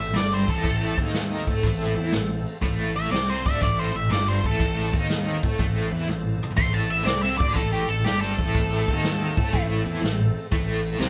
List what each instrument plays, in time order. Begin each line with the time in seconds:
Already playing: tonewheel organ A3 C4 A4
0.00 fingered electric bass A1, overdriven electric guitar A2, lead electric guitar E5
0.14 fingered electric bass G1, overdriven electric guitar G2 G3, lead electric guitar D5, snare, ride
0.34 lead electric guitar C5
0.47 fingered electric bass A1, overdriven electric guitar A2 A3, lead electric guitar A4, kick, ride
0.63 kick, ride
0.97 fingered electric bass D#2, overdriven electric guitar D#3 D#4, kick, ride
1.13 snare, ride
1.47 fingered electric bass A2, overdriven electric guitar A3 A4, kick, ride
1.63 fingered electric bass A1, overdriven electric guitar A2 A3, kick, ride
1.96 fingered electric bass E2, overdriven electric guitar E3 E4, ride
2.11 fingered electric bass A1, overdriven electric guitar A2, snare, ride
2.46 ride
2.61 fingered electric bass A1, overdriven electric guitar A2 A3, tonewheel organ C4 A4, kick, ride
2.96 lead electric guitar E5, ride
3.11 fingered electric bass C2, overdriven electric guitar C3 C4, lead electric guitar D5, snare, ride
3.30 lead electric guitar C5
3.46 fingered electric bass D2, overdriven electric guitar D3 D4, lead electric guitar E5, kick, ride
3.62 fingered electric bass A1, overdriven electric guitar A2 A3, lead electric guitar D5, kick, ride
3.79 lead electric guitar C5
3.94 fingered electric bass A1, overdriven electric guitar A2, lead electric guitar E5, ride
4.10 fingered electric bass G1, overdriven electric guitar G2 G3, lead electric guitar D5, snare, ride
4.28 lead electric guitar C5
4.43 fingered electric bass A1, overdriven electric guitar A2 A3, lead electric guitar A4, kick, ride
4.59 kick, ride
4.93 fingered electric bass D#2, overdriven electric guitar D#3 D#4, kick, ride
5.09 snare, ride
5.43 fingered electric bass A2, overdriven electric guitar A3 A4, kick, ride
5.58 fingered electric bass A1, overdriven electric guitar A2 A3, kick, ride
5.91 fingered electric bass E2, overdriven electric guitar E3 E4, ride
6.07 fingered electric bass A1, overdriven electric guitar A2, snare
6.43 mid tom
6.50 floor tom
6.56 fingered electric bass A1, overdriven electric guitar A2 A3, tonewheel organ A3 C4 A4, lead electric guitar C6, kick, ride
6.74 lead electric guitar A5
6.90 lead electric guitar E5, ride
7.04 fingered electric bass C2, overdriven electric guitar C3 C4, lead electric guitar D5, snare, ride
7.23 lead electric guitar E5
7.38 fingered electric bass D2, overdriven electric guitar D3 D4, lead electric guitar D5, kick, ride
7.53 fingered electric bass A1, overdriven electric guitar A2 A3, lead electric guitar A4, kick, ride
7.72 lead electric guitar G4
7.89 fingered electric bass A1, overdriven electric guitar A2, lead electric guitar A4, ride
8.04 fingered electric bass G1, overdriven electric guitar G2 G3, lead electric guitar G4, snare, ride
8.21 lead electric guitar A4
8.38 fingered electric bass A1, overdriven electric guitar A2 A3, kick, ride
8.54 kick, ride
8.88 fingered electric bass D#2, overdriven electric guitar D#3 D#4, kick, ride
9.03 snare, ride
9.37 fingered electric bass A2, overdriven electric guitar A3 A4, kick, ride
9.53 fingered electric bass A1, overdriven electric guitar A2 A3, kick, ride
9.86 fingered electric bass E2, overdriven electric guitar E3 E4, ride
10.02 fingered electric bass A1, overdriven electric guitar A2, snare, ride
10.37 ride
10.51 fingered electric bass A1, overdriven electric guitar A2 A3, tonewheel organ A3 C4, kick, ride
10.85 ride
11.00 fingered electric bass C2, overdriven electric guitar C3 C4, snare, ride